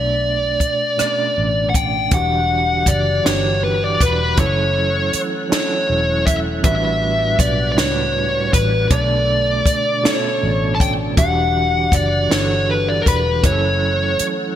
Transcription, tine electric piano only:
Already playing: B2 A3 D4 D5
0.97 B2 A3 C#4 D5
1.06 D4
2.11 E3 D4 F#4 G4
3.24 E3 D4 F#4 G4
4.37 F#3 C#4 E4 A4
5.49 F#3 C#4 E4 A4
6.63 A2 G3 C#4 F#4 B4
6.71 D4
7.76 A2 G3 D4 F#4 B4
8.90 B2 A3 D4 D5
10.03 B2 A3 C#4 A4
10.12 D4
11.16 E3 D4 F#4 G4
12.29 E3 D4 F#4 A4
13.43 F#3 C#4 E4 G4
13.52 A4

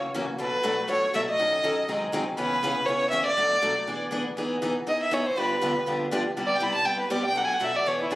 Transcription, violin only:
0.41 B4
0.91 C#5
1.15 E5
1.29 D#5
2.38 B4
2.86 C#5
3.11 E5
3.26 D5
4.88 D#5
5.03 E5
5.13 C#5
5.26 C5
5.39 B4
6.47 D5
6.56 G5
6.63 B5
6.75 A5
6.85 G5
7.00 B4
7.11 D5
7.25 G5
7.37 F#5
7.45 G#5
7.53 F#5
7.63 E5
7.76 D5
7.87 C#5
8.03 E4
8.12 G#4

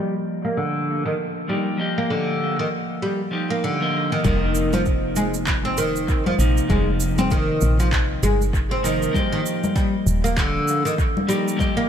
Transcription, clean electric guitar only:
Already playing: F3 A#3 G4 D#5
1.48 F3 A#3 D#4 G4
1.77 F3 A#3 G4 D#5
3.31 F3 A#3 D#4 G4
3.80 F3 A#3 A#4 D#5
4.23 C3 F3 A#3 D#4
6.38 C3 F3 A#3 D#4
6.68 C3 F3 A#3 D#4
8.82 C3 F3 A#3 D#4
9.11 F3 A#3 D#5
9.15 G4
11.27 F3 A#3 D#4 G4
11.56 F3 A#3 G4 D#5

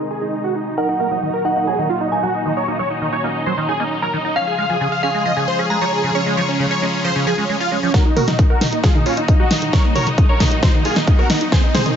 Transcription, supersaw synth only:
0.11 G#4
0.22 D#4
0.33 D#4
0.44 F#4
0.55 D#4
0.66 D#4
0.77 A#4
0.89 D#4
1.00 A#4
1.11 D#4
1.22 D#4
1.33 A#4
1.45 D#4
1.56 D#4
1.67 G#4
1.78 D#4
1.90 F4
2.01 D#4
2.12 D#4
2.23 F#4
2.34 D#4
2.46 D#4
2.57 C#5
2.68 D#4
2.79 C#5
2.90 D#4
3.01 D#4
3.12 C#5
3.24 D#4
3.35 D#4
3.46 C5
3.57 D#4
3.69 G#4
3.80 D#4
3.91 D#4
4.02 A#4
4.13 D#4
4.25 D#4
4.36 F5
4.47 G#4
4.58 F5
4.69 G#4
4.81 G#4
4.92 F5
5.03 G#4
5.14 G#4
5.25 D#5
5.36 G#4
5.48 C5
5.59 G#4
5.70 G#4
5.81 C#5
5.93 G#4
6.04 G#4
6.15 C#5
6.26 C#4
6.37 C#5
6.48 C#4
6.60 C#4
6.71 C#5
6.82 C#4
6.93 C#4
7.05 C5
7.16 C#4
7.27 G#4
7.38 C#4
7.49 C#4
7.60 F4
7.71 C#4
7.83 C#4
7.94 F#4 A#4
8.05 D#4
8.16 F#4 A#4
8.27 D#4
8.39 D#4
8.50 F#4 A#4
8.61 D#4
8.72 D#4
8.84 F4 G#4
8.95 D#4
9.06 C#4 F4
9.17 D#4
9.28 D#4
9.40 D#4 F#4
9.51 D#4
9.62 D#4
9.73 A#4 C#5
9.84 D#4
9.95 A#4 C#5
10.07 D#4
10.18 D#4
10.29 A#4 C#5
10.40 D#4
10.52 D#4
10.63 D#4 C5
10.74 D#4
10.85 F4 G#4
10.96 D#4
11.07 D#4
11.19 F#4 A#4
11.30 D#4
11.41 D#4
11.52 G#4 C5
11.63 D#4
11.74 G#4 C5
11.86 D#4

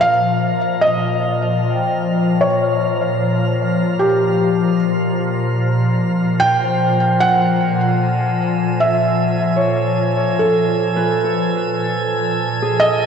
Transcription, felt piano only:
0.01 F5
0.81 D#5
2.41 C#5
3.99 G4
6.40 G5
7.21 F#5
8.80 E5
10.39 A4
12.80 D#5

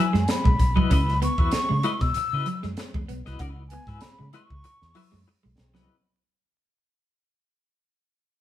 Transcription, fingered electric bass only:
0.14 F#2
0.46 B1
0.60 B1
0.77 C2
0.91 C#2
1.39 E2
1.54 muted fingered electric bass stroke
1.71 C#3
2.01 B2
2.17 muted fingered electric bass stroke
2.33 C#3
2.64 F#2
2.95 E2
3.10 B1
3.27 C2
3.40 C#2
3.87 G#2
4.04 muted fingered electric bass stroke
4.20 C#3
4.51 C#2
4.82 E2
5.13 F#2
5.45 B1
5.59 B1
5.76 C2

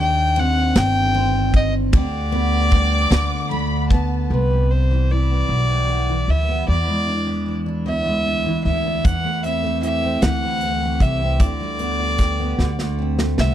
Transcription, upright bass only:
Already playing: D#2
0.76 G1
1.93 D2
3.11 D2
4.30 C2
5.49 B1
6.28 D2
6.68 E2
7.87 D2
8.65 D2
9.05 E2
10.22 D2
11.00 C2
11.40 D2
12.59 D2
13.38 C2

